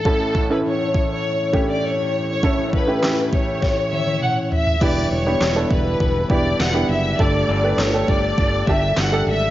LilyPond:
<<
  \new Staff \with { instrumentName = "Violin section" } { \time 4/4 \key e \dorian \tempo 4 = 101 a'8. b'16 cis''8. cis''4 d''16 cis''8. cis''16~ | cis''8 b'4 cis''4 e''8 fis''8 e''8 | d''8 cis''4 b'4 d''8 fis''8 e''8 | d''4 cis''8 d''4 e''8 fis''8 e''8 | }
  \new Staff \with { instrumentName = "Upright piano" } { \time 4/4 \key e \dorian <a cis' e' a'>8 r16 <a cis' e' a'>4~ <a cis' e' a'>16 r8 <a cis' e' g'>4 r8 | <a cis' e' a'>8 r16 <a cis' e' g'>16 <a cis' e' g'>4. r4. | <b d' e' g'>8 r16 <b d' e' g'>16 r16 <b d' e' a'>4 r16 <b d' e' g'>8 r16 <b d' e' g'>8 r16 | <a d' g' a'>8 r16 <a d' g' b'>16 r16 <a d' g' a'>4 r16 <a d' g' a'>8 r16 <a d' g' a'>8 r16 | }
  \new Staff \with { instrumentName = "Upright piano" } { \clef bass \time 4/4 \key e \dorian <a,, a,>1 | <a,, a,>1 | e4. r2 r8 | g,4. r2 r8 | }
  \new Staff \with { instrumentName = "Tonewheel organ" } { \time 4/4 \key e \dorian <cis' e'>1~ | <cis' e'>1 | <b e'>1 | <a g'>1 | }
  \new Staff \with { instrumentName = "Tonewheel organ" } { \clef bass \time 4/4 \key e \dorian <a, e>1~ | <a, e>1 | <d g>1~ | <d g>1 | }
  \new Staff \with { instrumentName = "Fingered electric bass" } { \clef bass \time 4/4 \key e \dorian r1 | r1 | e,,8 e,,8 e,,8 e,,8 e,,8 e,,8 e,,8 fis,,8 | g,,8 g,,8 g,,8 g,,8 g,,8 g,,8 g,,8 gis,,8 | }
  \new DrumStaff \with { instrumentName = "Drums" } \drummode { \time 4/4 bd8 bd8 r8 bd8 r8 bd8 r4 | bd8 bd8 <hc sn>8 bd8 <bd sn>8 tommh16 tommh16 toml8 tomfh16 tomfh16 | <cymc bd>4 <hc sn>8 bd8 bd8 bd8 <hc sn>4 | bd4 <hc sn>8 bd8 bd8 bd8 <hc sn>4 | }
>>